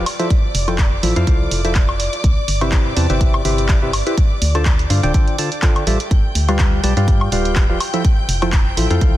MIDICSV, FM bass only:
0, 0, Header, 1, 2, 480
1, 0, Start_track
1, 0, Tempo, 483871
1, 303, Time_signature, 4, 2, 24, 8
1, 9097, End_track
2, 0, Start_track
2, 0, Title_t, "FM bass"
2, 0, Program_c, 0, 39
2, 542, Note_on_c, 0, 29, 94
2, 982, Note_off_c, 0, 29, 0
2, 1021, Note_on_c, 0, 33, 91
2, 1123, Note_off_c, 0, 33, 0
2, 1153, Note_on_c, 0, 41, 95
2, 1237, Note_off_c, 0, 41, 0
2, 1502, Note_on_c, 0, 29, 82
2, 2065, Note_off_c, 0, 29, 0
2, 2221, Note_on_c, 0, 36, 101
2, 2323, Note_off_c, 0, 36, 0
2, 2462, Note_on_c, 0, 31, 91
2, 2902, Note_off_c, 0, 31, 0
2, 2943, Note_on_c, 0, 40, 90
2, 3044, Note_off_c, 0, 40, 0
2, 3074, Note_on_c, 0, 31, 92
2, 3383, Note_off_c, 0, 31, 0
2, 3422, Note_on_c, 0, 31, 97
2, 3986, Note_off_c, 0, 31, 0
2, 4383, Note_on_c, 0, 38, 90
2, 4823, Note_off_c, 0, 38, 0
2, 4862, Note_on_c, 0, 43, 90
2, 4963, Note_off_c, 0, 43, 0
2, 4994, Note_on_c, 0, 26, 93
2, 5077, Note_off_c, 0, 26, 0
2, 5822, Note_on_c, 0, 33, 91
2, 5923, Note_off_c, 0, 33, 0
2, 6061, Note_on_c, 0, 31, 96
2, 6163, Note_off_c, 0, 31, 0
2, 6301, Note_on_c, 0, 38, 86
2, 6742, Note_off_c, 0, 38, 0
2, 6781, Note_on_c, 0, 35, 87
2, 6883, Note_off_c, 0, 35, 0
2, 6911, Note_on_c, 0, 43, 93
2, 7221, Note_off_c, 0, 43, 0
2, 7260, Note_on_c, 0, 26, 98
2, 7701, Note_off_c, 0, 26, 0
2, 8220, Note_on_c, 0, 29, 92
2, 8661, Note_off_c, 0, 29, 0
2, 8701, Note_on_c, 0, 33, 89
2, 8803, Note_off_c, 0, 33, 0
2, 8832, Note_on_c, 0, 41, 89
2, 8917, Note_off_c, 0, 41, 0
2, 9097, End_track
0, 0, End_of_file